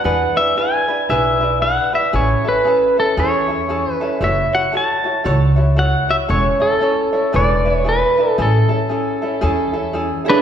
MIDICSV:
0, 0, Header, 1, 5, 480
1, 0, Start_track
1, 0, Key_signature, 3, "major"
1, 0, Tempo, 520833
1, 44, Time_signature, 4, 2, 24, 8
1, 9601, End_track
2, 0, Start_track
2, 0, Title_t, "Pedal steel guitar"
2, 0, Program_c, 0, 26
2, 49, Note_on_c, 0, 78, 83
2, 341, Note_on_c, 0, 76, 85
2, 349, Note_off_c, 0, 78, 0
2, 530, Note_off_c, 0, 76, 0
2, 532, Note_on_c, 0, 80, 86
2, 1014, Note_on_c, 0, 76, 77
2, 1021, Note_off_c, 0, 80, 0
2, 1454, Note_off_c, 0, 76, 0
2, 1494, Note_on_c, 0, 78, 87
2, 1790, Note_off_c, 0, 78, 0
2, 1799, Note_on_c, 0, 76, 85
2, 1978, Note_off_c, 0, 76, 0
2, 1986, Note_on_c, 0, 73, 71
2, 2276, Note_off_c, 0, 73, 0
2, 2291, Note_on_c, 0, 71, 86
2, 2758, Note_off_c, 0, 71, 0
2, 2761, Note_on_c, 0, 69, 70
2, 2939, Note_off_c, 0, 69, 0
2, 2945, Note_on_c, 0, 73, 78
2, 3627, Note_off_c, 0, 73, 0
2, 3627, Note_on_c, 0, 71, 78
2, 3903, Note_off_c, 0, 71, 0
2, 3907, Note_on_c, 0, 76, 76
2, 4190, Note_on_c, 0, 78, 86
2, 4197, Note_off_c, 0, 76, 0
2, 4373, Note_off_c, 0, 78, 0
2, 4395, Note_on_c, 0, 81, 80
2, 5115, Note_off_c, 0, 81, 0
2, 5336, Note_on_c, 0, 78, 88
2, 5627, Note_on_c, 0, 76, 96
2, 5631, Note_off_c, 0, 78, 0
2, 5675, Note_off_c, 0, 76, 0
2, 5809, Note_on_c, 0, 73, 78
2, 6098, Note_on_c, 0, 69, 81
2, 6108, Note_off_c, 0, 73, 0
2, 6783, Note_off_c, 0, 69, 0
2, 6783, Note_on_c, 0, 74, 83
2, 7143, Note_off_c, 0, 74, 0
2, 7143, Note_on_c, 0, 73, 83
2, 7267, Note_off_c, 0, 73, 0
2, 7269, Note_on_c, 0, 71, 81
2, 7656, Note_off_c, 0, 71, 0
2, 7656, Note_on_c, 0, 69, 81
2, 7750, Note_off_c, 0, 69, 0
2, 7759, Note_on_c, 0, 69, 65
2, 9145, Note_off_c, 0, 69, 0
2, 9488, Note_on_c, 0, 71, 82
2, 9493, Note_on_c, 0, 62, 61
2, 9601, Note_off_c, 0, 62, 0
2, 9601, Note_off_c, 0, 71, 0
2, 9601, End_track
3, 0, Start_track
3, 0, Title_t, "Vibraphone"
3, 0, Program_c, 1, 11
3, 9458, Note_on_c, 1, 68, 61
3, 9601, Note_off_c, 1, 68, 0
3, 9601, End_track
4, 0, Start_track
4, 0, Title_t, "Ukulele"
4, 0, Program_c, 2, 24
4, 38, Note_on_c, 2, 62, 84
4, 39, Note_on_c, 2, 68, 62
4, 47, Note_on_c, 2, 64, 66
4, 47, Note_on_c, 2, 71, 75
4, 325, Note_off_c, 2, 71, 0
4, 335, Note_off_c, 2, 62, 0
4, 335, Note_off_c, 2, 68, 0
4, 336, Note_on_c, 2, 71, 58
4, 337, Note_off_c, 2, 64, 0
4, 348, Note_on_c, 2, 64, 47
4, 357, Note_on_c, 2, 62, 45
4, 519, Note_off_c, 2, 62, 0
4, 522, Note_off_c, 2, 71, 0
4, 523, Note_off_c, 2, 64, 0
4, 523, Note_on_c, 2, 68, 52
4, 530, Note_on_c, 2, 62, 56
4, 534, Note_on_c, 2, 64, 54
4, 541, Note_on_c, 2, 71, 60
4, 801, Note_off_c, 2, 71, 0
4, 812, Note_off_c, 2, 64, 0
4, 812, Note_on_c, 2, 71, 50
4, 817, Note_off_c, 2, 68, 0
4, 820, Note_off_c, 2, 62, 0
4, 823, Note_on_c, 2, 64, 40
4, 830, Note_on_c, 2, 62, 35
4, 1000, Note_off_c, 2, 71, 0
4, 1003, Note_off_c, 2, 62, 0
4, 1006, Note_off_c, 2, 64, 0
4, 1010, Note_on_c, 2, 68, 72
4, 1014, Note_on_c, 2, 62, 74
4, 1016, Note_on_c, 2, 64, 80
4, 1025, Note_on_c, 2, 71, 76
4, 1284, Note_off_c, 2, 71, 0
4, 1295, Note_on_c, 2, 71, 52
4, 1296, Note_off_c, 2, 64, 0
4, 1300, Note_off_c, 2, 68, 0
4, 1302, Note_off_c, 2, 62, 0
4, 1307, Note_on_c, 2, 64, 44
4, 1318, Note_on_c, 2, 62, 41
4, 1481, Note_off_c, 2, 62, 0
4, 1481, Note_off_c, 2, 71, 0
4, 1487, Note_off_c, 2, 64, 0
4, 1488, Note_on_c, 2, 68, 49
4, 1492, Note_on_c, 2, 62, 60
4, 1497, Note_on_c, 2, 64, 50
4, 1502, Note_on_c, 2, 71, 56
4, 1766, Note_off_c, 2, 71, 0
4, 1777, Note_on_c, 2, 71, 44
4, 1779, Note_off_c, 2, 64, 0
4, 1779, Note_off_c, 2, 68, 0
4, 1781, Note_off_c, 2, 62, 0
4, 1790, Note_on_c, 2, 64, 45
4, 1800, Note_on_c, 2, 62, 41
4, 1957, Note_off_c, 2, 64, 0
4, 1961, Note_on_c, 2, 68, 69
4, 1962, Note_off_c, 2, 62, 0
4, 1962, Note_off_c, 2, 71, 0
4, 1966, Note_on_c, 2, 61, 70
4, 1968, Note_on_c, 2, 64, 79
4, 1972, Note_on_c, 2, 69, 62
4, 2243, Note_off_c, 2, 69, 0
4, 2254, Note_off_c, 2, 64, 0
4, 2254, Note_on_c, 2, 69, 53
4, 2255, Note_off_c, 2, 68, 0
4, 2258, Note_off_c, 2, 61, 0
4, 2265, Note_on_c, 2, 64, 51
4, 2276, Note_on_c, 2, 61, 44
4, 2434, Note_off_c, 2, 61, 0
4, 2438, Note_on_c, 2, 68, 51
4, 2440, Note_off_c, 2, 69, 0
4, 2445, Note_on_c, 2, 61, 55
4, 2446, Note_off_c, 2, 64, 0
4, 2456, Note_on_c, 2, 64, 54
4, 2461, Note_on_c, 2, 69, 56
4, 2728, Note_off_c, 2, 69, 0
4, 2733, Note_off_c, 2, 68, 0
4, 2737, Note_off_c, 2, 61, 0
4, 2739, Note_on_c, 2, 69, 44
4, 2742, Note_off_c, 2, 64, 0
4, 2752, Note_on_c, 2, 64, 42
4, 2761, Note_on_c, 2, 61, 37
4, 2917, Note_off_c, 2, 61, 0
4, 2921, Note_on_c, 2, 68, 70
4, 2922, Note_off_c, 2, 64, 0
4, 2923, Note_off_c, 2, 69, 0
4, 2928, Note_on_c, 2, 61, 74
4, 2933, Note_on_c, 2, 64, 80
4, 2935, Note_on_c, 2, 69, 87
4, 3197, Note_off_c, 2, 69, 0
4, 3208, Note_off_c, 2, 64, 0
4, 3208, Note_on_c, 2, 69, 48
4, 3215, Note_off_c, 2, 68, 0
4, 3219, Note_off_c, 2, 61, 0
4, 3219, Note_on_c, 2, 64, 46
4, 3230, Note_on_c, 2, 61, 45
4, 3395, Note_off_c, 2, 61, 0
4, 3397, Note_off_c, 2, 69, 0
4, 3398, Note_off_c, 2, 64, 0
4, 3399, Note_on_c, 2, 68, 50
4, 3406, Note_on_c, 2, 61, 56
4, 3409, Note_on_c, 2, 64, 66
4, 3413, Note_on_c, 2, 69, 62
4, 3683, Note_off_c, 2, 69, 0
4, 3694, Note_off_c, 2, 64, 0
4, 3694, Note_off_c, 2, 68, 0
4, 3694, Note_on_c, 2, 69, 53
4, 3697, Note_off_c, 2, 61, 0
4, 3705, Note_on_c, 2, 64, 56
4, 3711, Note_on_c, 2, 61, 50
4, 3868, Note_off_c, 2, 69, 0
4, 3869, Note_off_c, 2, 64, 0
4, 3879, Note_on_c, 2, 69, 60
4, 3880, Note_on_c, 2, 64, 69
4, 3881, Note_off_c, 2, 61, 0
4, 3884, Note_on_c, 2, 66, 68
4, 3890, Note_on_c, 2, 73, 79
4, 4159, Note_off_c, 2, 73, 0
4, 4166, Note_off_c, 2, 66, 0
4, 4170, Note_on_c, 2, 73, 51
4, 4174, Note_off_c, 2, 69, 0
4, 4175, Note_off_c, 2, 64, 0
4, 4177, Note_on_c, 2, 66, 47
4, 4186, Note_on_c, 2, 64, 42
4, 4352, Note_off_c, 2, 64, 0
4, 4352, Note_on_c, 2, 69, 52
4, 4356, Note_off_c, 2, 66, 0
4, 4358, Note_off_c, 2, 73, 0
4, 4363, Note_on_c, 2, 64, 49
4, 4367, Note_on_c, 2, 66, 63
4, 4374, Note_on_c, 2, 73, 62
4, 4633, Note_off_c, 2, 73, 0
4, 4643, Note_off_c, 2, 66, 0
4, 4644, Note_on_c, 2, 73, 48
4, 4650, Note_off_c, 2, 64, 0
4, 4651, Note_off_c, 2, 69, 0
4, 4654, Note_on_c, 2, 66, 40
4, 4661, Note_on_c, 2, 64, 37
4, 4825, Note_off_c, 2, 64, 0
4, 4828, Note_off_c, 2, 66, 0
4, 4830, Note_on_c, 2, 69, 63
4, 4835, Note_off_c, 2, 73, 0
4, 4836, Note_on_c, 2, 64, 64
4, 4839, Note_on_c, 2, 66, 77
4, 4846, Note_on_c, 2, 73, 90
4, 5112, Note_off_c, 2, 73, 0
4, 5122, Note_off_c, 2, 66, 0
4, 5123, Note_on_c, 2, 73, 60
4, 5127, Note_off_c, 2, 64, 0
4, 5130, Note_off_c, 2, 69, 0
4, 5133, Note_on_c, 2, 66, 56
4, 5138, Note_on_c, 2, 64, 46
4, 5304, Note_off_c, 2, 64, 0
4, 5310, Note_off_c, 2, 66, 0
4, 5311, Note_on_c, 2, 69, 52
4, 5315, Note_off_c, 2, 73, 0
4, 5315, Note_on_c, 2, 64, 54
4, 5321, Note_on_c, 2, 66, 52
4, 5328, Note_on_c, 2, 73, 54
4, 5594, Note_off_c, 2, 73, 0
4, 5604, Note_off_c, 2, 66, 0
4, 5605, Note_on_c, 2, 73, 51
4, 5610, Note_off_c, 2, 69, 0
4, 5612, Note_off_c, 2, 64, 0
4, 5615, Note_on_c, 2, 66, 46
4, 5622, Note_on_c, 2, 64, 45
4, 5790, Note_off_c, 2, 64, 0
4, 5791, Note_on_c, 2, 69, 65
4, 5793, Note_off_c, 2, 66, 0
4, 5793, Note_off_c, 2, 73, 0
4, 5796, Note_on_c, 2, 61, 76
4, 5801, Note_on_c, 2, 64, 70
4, 5805, Note_on_c, 2, 73, 77
4, 6070, Note_off_c, 2, 73, 0
4, 6078, Note_off_c, 2, 69, 0
4, 6079, Note_off_c, 2, 64, 0
4, 6081, Note_on_c, 2, 73, 56
4, 6087, Note_off_c, 2, 61, 0
4, 6090, Note_on_c, 2, 64, 46
4, 6098, Note_on_c, 2, 61, 43
4, 6267, Note_off_c, 2, 61, 0
4, 6271, Note_on_c, 2, 69, 51
4, 6272, Note_off_c, 2, 64, 0
4, 6274, Note_off_c, 2, 73, 0
4, 6278, Note_on_c, 2, 61, 55
4, 6283, Note_on_c, 2, 64, 60
4, 6290, Note_on_c, 2, 73, 62
4, 6557, Note_off_c, 2, 73, 0
4, 6566, Note_off_c, 2, 64, 0
4, 6568, Note_on_c, 2, 73, 50
4, 6570, Note_off_c, 2, 69, 0
4, 6574, Note_off_c, 2, 61, 0
4, 6577, Note_on_c, 2, 64, 43
4, 6583, Note_on_c, 2, 61, 35
4, 6749, Note_off_c, 2, 64, 0
4, 6751, Note_on_c, 2, 68, 69
4, 6754, Note_off_c, 2, 61, 0
4, 6758, Note_off_c, 2, 73, 0
4, 6758, Note_on_c, 2, 62, 75
4, 6760, Note_on_c, 2, 64, 75
4, 6764, Note_on_c, 2, 71, 88
4, 7039, Note_off_c, 2, 71, 0
4, 7049, Note_off_c, 2, 64, 0
4, 7050, Note_on_c, 2, 71, 45
4, 7051, Note_off_c, 2, 68, 0
4, 7054, Note_off_c, 2, 62, 0
4, 7060, Note_on_c, 2, 64, 47
4, 7067, Note_on_c, 2, 62, 39
4, 7228, Note_on_c, 2, 68, 55
4, 7229, Note_off_c, 2, 62, 0
4, 7234, Note_off_c, 2, 64, 0
4, 7234, Note_off_c, 2, 71, 0
4, 7240, Note_on_c, 2, 62, 52
4, 7245, Note_on_c, 2, 64, 61
4, 7245, Note_on_c, 2, 71, 56
4, 7523, Note_off_c, 2, 71, 0
4, 7529, Note_off_c, 2, 68, 0
4, 7533, Note_off_c, 2, 64, 0
4, 7534, Note_on_c, 2, 71, 48
4, 7535, Note_off_c, 2, 62, 0
4, 7544, Note_on_c, 2, 64, 47
4, 7552, Note_on_c, 2, 62, 49
4, 7718, Note_off_c, 2, 64, 0
4, 7721, Note_off_c, 2, 71, 0
4, 7722, Note_on_c, 2, 68, 71
4, 7724, Note_off_c, 2, 62, 0
4, 7728, Note_on_c, 2, 61, 64
4, 7729, Note_on_c, 2, 64, 78
4, 7734, Note_on_c, 2, 69, 84
4, 7995, Note_off_c, 2, 69, 0
4, 8006, Note_on_c, 2, 69, 59
4, 8008, Note_off_c, 2, 64, 0
4, 8016, Note_off_c, 2, 61, 0
4, 8017, Note_off_c, 2, 68, 0
4, 8019, Note_on_c, 2, 64, 42
4, 8027, Note_on_c, 2, 61, 41
4, 8192, Note_off_c, 2, 61, 0
4, 8194, Note_on_c, 2, 68, 50
4, 8197, Note_off_c, 2, 69, 0
4, 8200, Note_off_c, 2, 64, 0
4, 8203, Note_on_c, 2, 61, 57
4, 8211, Note_on_c, 2, 64, 58
4, 8215, Note_on_c, 2, 69, 62
4, 8485, Note_off_c, 2, 69, 0
4, 8493, Note_off_c, 2, 64, 0
4, 8493, Note_off_c, 2, 68, 0
4, 8496, Note_on_c, 2, 69, 48
4, 8497, Note_off_c, 2, 61, 0
4, 8504, Note_on_c, 2, 64, 51
4, 8513, Note_on_c, 2, 61, 41
4, 8666, Note_off_c, 2, 61, 0
4, 8673, Note_off_c, 2, 64, 0
4, 8674, Note_on_c, 2, 68, 86
4, 8675, Note_off_c, 2, 69, 0
4, 8677, Note_on_c, 2, 61, 87
4, 8684, Note_on_c, 2, 64, 85
4, 8686, Note_on_c, 2, 69, 84
4, 8960, Note_off_c, 2, 69, 0
4, 8965, Note_off_c, 2, 64, 0
4, 8971, Note_on_c, 2, 69, 54
4, 8973, Note_off_c, 2, 68, 0
4, 8975, Note_off_c, 2, 61, 0
4, 8976, Note_on_c, 2, 64, 46
4, 8988, Note_on_c, 2, 61, 49
4, 9148, Note_off_c, 2, 61, 0
4, 9154, Note_off_c, 2, 64, 0
4, 9154, Note_on_c, 2, 68, 65
4, 9158, Note_off_c, 2, 69, 0
4, 9159, Note_on_c, 2, 61, 57
4, 9165, Note_on_c, 2, 64, 70
4, 9169, Note_on_c, 2, 69, 71
4, 9433, Note_off_c, 2, 69, 0
4, 9441, Note_off_c, 2, 64, 0
4, 9444, Note_on_c, 2, 69, 55
4, 9452, Note_on_c, 2, 64, 53
4, 9453, Note_off_c, 2, 61, 0
4, 9453, Note_off_c, 2, 68, 0
4, 9464, Note_on_c, 2, 61, 44
4, 9601, Note_off_c, 2, 61, 0
4, 9601, Note_off_c, 2, 64, 0
4, 9601, Note_off_c, 2, 69, 0
4, 9601, End_track
5, 0, Start_track
5, 0, Title_t, "Upright bass"
5, 0, Program_c, 3, 32
5, 48, Note_on_c, 3, 40, 76
5, 238, Note_off_c, 3, 40, 0
5, 1008, Note_on_c, 3, 35, 75
5, 1630, Note_off_c, 3, 35, 0
5, 1967, Note_on_c, 3, 33, 75
5, 2157, Note_off_c, 3, 33, 0
5, 2925, Note_on_c, 3, 40, 81
5, 3547, Note_off_c, 3, 40, 0
5, 3876, Note_on_c, 3, 30, 77
5, 4069, Note_off_c, 3, 30, 0
5, 4844, Note_on_c, 3, 37, 82
5, 5467, Note_off_c, 3, 37, 0
5, 5802, Note_on_c, 3, 28, 79
5, 5993, Note_off_c, 3, 28, 0
5, 6767, Note_on_c, 3, 28, 85
5, 7389, Note_off_c, 3, 28, 0
5, 7727, Note_on_c, 3, 33, 77
5, 7917, Note_off_c, 3, 33, 0
5, 8690, Note_on_c, 3, 40, 80
5, 9312, Note_off_c, 3, 40, 0
5, 9601, End_track
0, 0, End_of_file